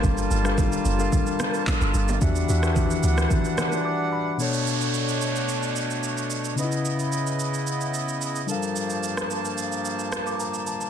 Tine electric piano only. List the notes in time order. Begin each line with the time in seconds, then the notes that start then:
Already playing: G3 D4 A4 A#4 F5
0.44 G3 D4 A4 A#4 F5
0.98 G3 D4 A4 A#4 F5
2.21 E3 D4 F#4 G4 E5
2.48 E3 D4 F#4 G4 E5
2.62 E3 D4 F#4 G4 E5
3.85 D6
4.13 B5
4.27 F#5
4.37 B2 B3 D4 A4
4.42 C#5
6.55 C#3 C#4 D#4 B4
6.61 E4 D#5
8.46 G3 D4 A4 A#4
8.52 F5
10.27 D6
10.40 A#5
10.67 A5
10.81 A5